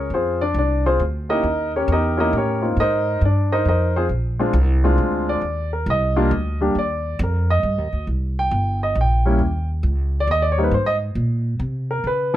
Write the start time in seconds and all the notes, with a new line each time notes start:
0.10 F2 C5
0.14 C4 F4 G#4
0.41 D4 D5
0.54 C2
0.58 D4 D5
0.86 C4 F4 G#4 C5
0.99 D2
1.29 A#3 C#4 D#4 E4 G4 A#4 D#5
1.43 D#2
1.76 C#4 G4 A#4 C#5
1.88 E2
1.92 D#4 G4 A#4 D#5
2.17 A#3 C#4 D#4 E4 G4 A#4 D#5
2.33 A2
2.37 C#4 G4 A#4 C#5
2.62 A#3 C4 D#4 F4
2.77 G#2 D#4 A#4 D#5
2.81 C5
3.21 G2 D4 D5
3.52 D#4 A#4 C5 D#5
3.65 F2 D#4 A#4 C5 D#5
3.96 C4 F4 G#4 C5
4.09 A#1
4.39 G#3 C4 D4 F4
4.53 C2
4.84 G#3 C4 D4 F4
4.98 D2
5.29 D5
5.42 D#2
5.73 A#4
5.86 C2 D#5
6.16 G3 A#3 D4 F4
6.31 D2
6.61 G3 A#3 D4 G4
6.75 D#2 D5
7.19 F2
7.24 A#4
7.50 D#5
7.63 G2
7.78 D#2
7.93 D2
8.07 C2
8.39 G5
8.51 G1
8.83 D#5
8.95 A#1
9.01 G5
9.25 G3 A#3 C#4 E4
9.39 D#2
9.83 C#2
10.20 D5
10.27 D#2 D#5
10.42 D5
10.52 C#5
10.58 G3 A#3 C4 D#4
10.64 B4
10.71 G#2 C5
10.86 D#5
11.15 A#2
11.60 C3
11.91 A#4
12.04 C#3 B4